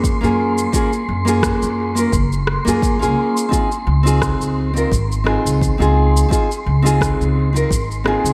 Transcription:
Already playing: A#3 C#4 F4 G#4 C6
0.04 kick, shaker
0.21 F#2 A#3 C#4 F4 G#4, shaker
0.58 shaker
0.72 A#3 C#4 F4 G#4, kick, shaker
0.93 shaker
1.09 F#2
1.25 A#3 C#4 F4 G#4, shaker
1.43 kick, cross-stick, shaker
1.62 F#2, shaker
1.95 A#3 C#4 F4 A#4, shaker
2.12 F#1, kick, shaker
2.32 shaker
2.47 cross-stick
2.65 F#2 A#3 C#4 F4 G#4, shaker
2.82 kick, shaker
2.99 C#2 A#3 C#4 F4 G#4, shaker
3.37 shaker
3.49 C4 D#4 F4 G#4, kick
3.53 shaker
3.72 shaker
3.87 C#2
4.03 C4 D#4 F4 G#4, shaker
4.22 kick, cross-stick, shaker
4.41 C#2, shaker
4.74 C4 D#4 F4 A#4, shaker
4.92 G#1, kick, shaker
5.12 shaker
5.24 C4 D#4 F4 G#4, cross-stick
5.45 C#2, shaker
5.61 kick, shaker
5.78 C#2 C4 D#4 F4 G#4, shaker
6.17 shaker
6.29 C4 D#4 F4 G#4, kick
6.33 shaker
6.51 shaker
6.66 C#2
6.82 C4 D#4 F4 G#4, shaker
7.01 kick, cross-stick, shaker
7.20 C#2, shaker
7.53 C4 D#4 F4 A#4, shaker
7.71 G#1, kick, shaker
7.91 shaker
8.04 C4 D#4 F4 G#4, cross-stick
8.24 C#2, shaker

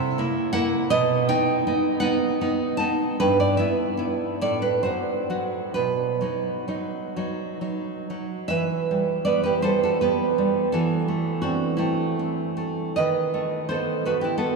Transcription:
Already playing: C3 E5
0.18 A#3 E4
0.53 A#3 E4 F#5
0.90 B2 D#5
1.28 B3 D#4 G5
1.67 B3 D#4
2.00 B3 D#4 F#5
2.41 B3 D#4
2.77 B3 D#4 A5
3.20 G2 B4
3.40 D5
3.57 B3 E4 E5
3.97 B3 E4
4.41 A2 D5
4.62 B4
4.83 F#3 F#4 C5
5.30 F#3 F#4
5.74 B2 B4
6.21 F#3 D#4
6.68 F#3 D#4
7.16 F#3 D#4
7.61 F#3 D#4
8.10 F#3 D#4
8.48 E3 B4 E5
8.91 G3
9.25 B3 B4 D5
9.44 G4 B4
9.62 G3 A4 C5
9.83 F#4 A4
10.01 B3 G4 B4
10.38 G3
10.72 E3 F#4 A4
11.08 A3
11.42 C4 D4 F#4
11.77 A3 C4 E4
12.19 C4
12.57 A3
12.96 D#3 B4 D#5
13.34 A3
13.69 B3 A4 C5
14.05 A3 F#4 B4
14.21 E4 G4
14.38 B3 F#4 A4

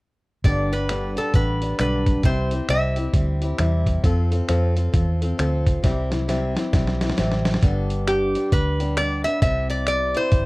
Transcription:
0.44 G1 G2 D3 G3 B3 D4 G4 D5, kick, closed hi-hat
0.72 G3 B3 D4 G4 B4, closed hi-hat
0.89 G2 D3 G3 B3 D4 G4, finger snap, closed hi-hat
1.16 G3 B3 D4 G4 A4, closed hi-hat
1.33 A1 G3 B3 D4 G4 B4, kick, closed hi-hat
1.62 G3 B3 D4 G4, closed hi-hat
1.79 B1 G2 D3 G3 B3 D4 G4 B4, finger snap, closed hi-hat
2.06 kick, closed hi-hat
2.23 C2 C3 G3 C4 E4 G4 C5, kick, closed hi-hat
2.51 C4 E4 G4, closed hi-hat
2.69 C2 C3 G3 C4 E4 G4 E5, finger snap, closed hi-hat
2.96 C4 E4 G4, closed hi-hat
3.13 D2 G3 C4 E4 G4, kick, closed hi-hat
3.42 C4 E4 G4, closed hi-hat
3.58 E2 C3 G3 C4 E4 G4, finger snap, closed hi-hat
3.87 kick, closed hi-hat
4.04 F2 F3 C4 F4 A4, kick, closed hi-hat
4.31 C4 F4 A4, closed hi-hat
4.48 F2 F3 C4 F4 A4, finger snap, closed hi-hat
4.75 C4 F4 A4, closed hi-hat
4.93 E2 F3 C4 F4 A4, kick, closed hi-hat
5.21 C4 F4 A4, closed hi-hat
5.38 D2 F3 C4 F4 A4, finger snap, closed hi-hat
5.67 kick, closed hi-hat
5.83 C2 C3 G3 C4 E4 G4, kick, snare, closed hi-hat
6.11 C4 E4 G4, snare, closed hi-hat
6.28 C3 G3 C4 E4 G4, snare, closed hi-hat
6.55 C4 E4 G4, snare, closed hi-hat
6.73 B1 G3 C4 E4 G4, kick, snare, closed hi-hat
6.87 snare
7.00 C4 E4 G4, snare, closed hi-hat
7.10 snare
7.18 A1 C3 G3 C4 E4 G4, snare, closed hi-hat
7.32 snare
7.45 snare, closed hi-hat
7.54 snare
7.63 G1 G2 D3 G3 B3 D4 G4, kick, closed hi-hat
7.90 closed hi-hat
8.07 G4, finger snap, closed hi-hat
8.35 G3 B3 D4 G4, closed hi-hat
8.52 D2 B4, kick, closed hi-hat
8.80 G3 B3 D4 G4, closed hi-hat
8.97 G3 B3 D4 G4 D5, finger snap, closed hi-hat
9.24 G3 B3 D4 G4 E5, closed hi-hat
9.42 C2 C3 G3 C4 E4 G4 E5, kick, closed hi-hat
9.70 D5, closed hi-hat
9.87 D5, finger snap, closed hi-hat
10.14 C4 E4 G4 C5, closed hi-hat
10.32 G1, kick, closed hi-hat

